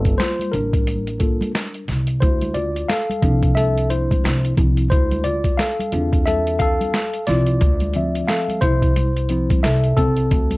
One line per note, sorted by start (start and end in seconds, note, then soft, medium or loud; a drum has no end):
0.00 0.13 G1 medium
0.00 2.18 G3 soft
0.00 1.19 A#3 soft
0.00 0.16 C4 medium
0.00 0.19 F4 medium
0.00 0.22 A4 medium
0.05 kick medium
0.05 closed hi-hat soft
0.05 shaker soft
0.18 0.52 F4 medium
0.18 0.54 C5 medium
0.18 snare medium
0.18 closed hi-hat medium
0.18 shaker medium
0.39 closed hi-hat soft
0.39 high conga medium
0.39 shaker soft
0.52 1.37 A1 medium
0.52 1.85 D4 medium
0.52 1.84 A#4 medium
0.52 closed hi-hat medium
0.52 low conga medium
0.52 shaker soft
0.73 kick medium
0.73 closed hi-hat medium
0.73 shaker soft
0.87 closed hi-hat medium
0.87 high conga soft
0.87 shaker medium
1.06 closed hi-hat soft
1.06 shaker soft
1.20 1.51 A#3 soft
1.20 1.51 F4 soft
1.20 1.51 A4 soft
1.20 kick medium
1.20 closed hi-hat medium
1.20 shaker medium
1.41 closed hi-hat medium
1.41 high conga medium
1.41 shaker soft
1.54 snare loud
1.54 closed hi-hat medium
1.54 shaker medium
1.74 closed hi-hat soft
1.74 shaker soft
1.88 2.19 C2 medium
1.88 snare soft
1.88 closed hi-hat medium
1.88 low conga medium
1.88 shaker soft
2.07 closed hi-hat medium
2.07 shaker soft
2.20 2.82 D2 medium
2.20 2.54 E4 medium
2.20 2.56 C5 medium
2.20 kick loud
2.20 closed hi-hat medium
2.20 shaker medium
2.41 closed hi-hat medium
2.41 high conga medium
2.41 shaker soft
2.54 2.88 F4 medium
2.54 2.90 D5 medium
2.54 closed hi-hat medium
2.54 low conga medium
2.54 shaker soft
2.76 closed hi-hat soft
2.76 shaker soft
2.89 3.54 A4 medium
2.89 3.59 F5 loud
2.89 snare loud
2.89 closed hi-hat medium
2.89 shaker medium
3.10 closed hi-hat soft
3.10 high conga medium
3.10 shaker soft
3.23 4.06 C2 medium
3.23 4.56 F3 medium
3.23 4.56 C4 soft
3.23 5.89 D4 medium
3.23 kick loud
3.23 closed hi-hat medium
3.23 low conga medium
3.23 shaker soft
3.43 kick medium
3.43 closed hi-hat medium
3.43 shaker soft
3.55 3.88 A4 medium
3.55 3.91 E5 medium
3.55 closed hi-hat loud
3.55 high conga soft
3.55 shaker medium
3.76 closed hi-hat soft
3.76 shaker soft
3.90 4.54 E4 medium
3.90 4.54 C5 medium
3.90 closed hi-hat medium
3.90 shaker medium
4.11 kick medium
4.11 closed hi-hat soft
4.11 high conga medium
4.11 shaker soft
4.24 4.54 C2 medium
4.24 snare loud
4.24 closed hi-hat medium
4.24 shaker medium
4.44 closed hi-hat soft
4.44 shaker soft
4.57 4.88 C2 medium
4.57 4.88 F3 soft
4.57 4.88 C4 soft
4.57 4.89 E4 soft
4.57 kick medium
4.57 closed hi-hat medium
4.57 low conga medium
4.57 shaker soft
4.77 closed hi-hat medium
4.77 shaker soft
4.90 5.52 D2 medium
4.90 5.24 E4 medium
4.90 5.26 C5 medium
4.90 kick loud
4.90 closed hi-hat medium
4.90 shaker medium
5.11 closed hi-hat medium
5.11 high conga medium
5.11 shaker soft
5.24 5.57 F4 medium
5.24 5.60 D5 medium
5.24 closed hi-hat medium
5.24 low conga medium
5.24 shaker soft
5.44 kick medium
5.44 closed hi-hat soft
5.44 shaker soft
5.58 6.23 A4 medium
5.58 6.28 F5 medium
5.58 snare loud
5.58 closed hi-hat medium
5.58 shaker medium
5.79 closed hi-hat soft
5.79 high conga medium
5.79 shaker soft
5.92 6.76 E2 medium
5.92 6.90 C4 medium
5.92 6.91 D4 medium
5.92 6.90 F4 medium
5.92 closed hi-hat medium
5.92 low conga medium
5.92 shaker soft
6.12 kick medium
6.12 closed hi-hat soft
6.12 shaker soft
6.25 6.58 A4 medium
6.25 6.57 E5 loud
6.25 closed hi-hat loud
6.25 high conga soft
6.25 shaker medium
6.46 closed hi-hat soft
6.46 shaker soft
6.59 7.24 A4 medium
6.59 7.29 F5 loud
6.59 kick medium
6.59 closed hi-hat medium
6.59 shaker medium
6.81 closed hi-hat medium
6.81 high conga medium
6.81 shaker soft
6.94 snare loud
6.94 closed hi-hat medium
6.94 shaker medium
7.13 closed hi-hat soft
7.13 shaker soft
7.27 7.58 C2 medium
7.27 7.58 F3 soft
7.27 7.58 C4 soft
7.27 7.59 E4 medium
7.27 8.26 F4 medium
7.27 8.24 D5 medium
7.27 snare soft
7.27 closed hi-hat medium
7.27 low conga medium
7.27 shaker soft
7.46 closed hi-hat medium
7.46 shaker soft
7.61 8.22 D2 medium
7.61 kick loud
7.61 closed hi-hat medium
7.61 shaker medium
7.80 closed hi-hat soft
7.80 high conga medium
7.80 shaker soft
7.93 8.92 F3 medium
7.93 8.92 C4 soft
7.93 8.93 E5 medium
7.93 closed hi-hat medium
7.93 low conga medium
7.93 shaker soft
8.15 closed hi-hat soft
8.15 shaker soft
8.28 8.61 A4 medium
8.28 8.63 F5 medium
8.28 snare loud
8.28 closed hi-hat medium
8.28 shaker medium
8.49 closed hi-hat soft
8.49 high conga medium
8.49 shaker soft
8.61 9.46 C2 medium
8.61 9.30 E4 medium
8.61 9.59 C5 loud
8.61 kick medium
8.61 closed hi-hat medium
8.61 low conga medium
8.61 shaker soft
8.82 kick medium
8.82 closed hi-hat soft
8.82 shaker soft
8.96 closed hi-hat loud
8.96 high conga soft
8.96 shaker medium
9.16 closed hi-hat soft
9.16 shaker soft
9.29 9.60 F3 medium
9.29 9.61 C4 soft
9.29 9.61 E4 medium
9.29 closed hi-hat medium
9.29 shaker medium
9.50 kick loud
9.50 closed hi-hat medium
9.50 high conga medium
9.50 shaker soft
9.63 9.94 C2 loud
9.63 9.95 A4 medium
9.63 9.98 E5 medium
9.63 snare loud
9.63 closed hi-hat medium
9.63 shaker medium
9.84 closed hi-hat soft
9.84 shaker soft
9.97 10.27 C2 medium
9.97 10.57 C4 medium
9.97 10.57 A4 medium
9.97 kick medium
9.97 closed hi-hat medium
9.97 low conga medium
9.97 shaker soft
10.17 closed hi-hat medium
10.17 shaker soft
10.30 10.57 D2 loud
10.30 kick loud
10.30 closed hi-hat medium
10.30 shaker medium
10.51 closed hi-hat medium
10.51 high conga medium
10.51 shaker soft